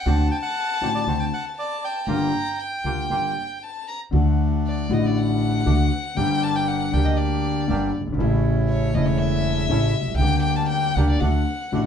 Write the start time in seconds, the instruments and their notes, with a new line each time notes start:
Already playing: bandoneon F#5
0.06 upright bass D2, grand piano D2 D3 A3 C4 F#4, bandoneon C4 D4 F#4, violin A5
0.31 bandoneon G5
0.42 bandoneon F#5
0.81 upright bass A1, grand piano A1 A2 D3 A3 C4 F#4, bandoneon C4 D4 F#4
0.95 bandoneon D5
1.07 grand piano D2 D3 A3 C4 F#4, upright bass D2, bandoneon C4 D4 F#4
1.20 bandoneon G5
1.34 bandoneon F#5
1.57 bandoneon D5, violin A5
1.84 bandoneon G5
2.07 upright bass G1, grand piano G1 G2 D3 G3 A#3 F4, bandoneon A#3 F4 G4, violin A#5
2.59 violin G5
2.84 upright bass D2, grand piano D2 D3 G3 A#3 F4, bandoneon A#3 F4 G4
3.10 grand piano G1 G2 D3 G3 A#3 F4, upright bass G1, bandoneon A#3 F4 G4
3.63 violin A5
3.88 violin A#5
4.11 upright bass D2, grand piano D2 D3 F#3 A3 F#4, bandoneon A3 D4 F#4
4.67 violin D5
4.88 upright bass A1, grand piano A1 A2 D3 F#3 A3 F#4, bandoneon A3 D4 F#4
4.93 violin D#5
5.06 violin D5
5.17 violin F#5
5.65 grand piano D2 D3 F#3 A3 F#4, upright bass D2, bandoneon A3 D4 F#4
6.15 grand piano G1 G2 D3 G3 A#3, upright bass G1, bandoneon A#3 D4 G4, violin G5
6.19 grand piano G4
6.43 violin A5
6.56 violin G5
6.68 violin F#5
6.92 upright bass D2, grand piano D2 D3 G3 A#3 G4, bandoneon A#3 D4 G4, violin G5
7.05 violin D#5
7.17 violin D5
7.68 grand piano G1 G2 D3 G3 A#3 G4, upright bass G1, bandoneon A#3 D4 G4
8.01 grand piano F#1, upright bass F#1
8.06 grand piano G1, upright bass G1
8.12 grand piano G#1, upright bass G#1
8.17 grand piano A1 A2 C#3 E3 A3, upright bass A1, bandoneon A3 C#4 E4
8.21 grand piano E4
8.69 violin C#5
8.93 grand piano E1 E2 C#3 E3 A3, upright bass E1, bandoneon A3 C#4 E4, violin D#5
8.97 grand piano E4
9.06 violin C#5
9.18 violin E5
9.69 grand piano A1 A2 C#3 E3 A3 E4, upright bass A1, bandoneon A3 C#4 E4
10.01 grand piano B1, upright bass B1
10.07 grand piano C2, upright bass C2
10.14 grand piano C#2, upright bass C#2, violin G5
10.18 grand piano D2 D3 G3 A#3, upright bass D2, bandoneon A#3 D4 G4
10.23 grand piano G4
10.42 violin G5
10.56 violin A5
10.69 violin G5
10.95 upright bass D2, grand piano D2 D3 G3 A#3 G4, bandoneon A#3 D4 G4, violin F#5
11.09 violin D5
11.20 grand piano D2 D3 F#3 A3 F#4, upright bass D2, bandoneon A3 D4 F#4, violin F#5
11.72 grand piano A1 A2 D3 F#3 A3 F#4, upright bass A1, bandoneon A3 D4 F#4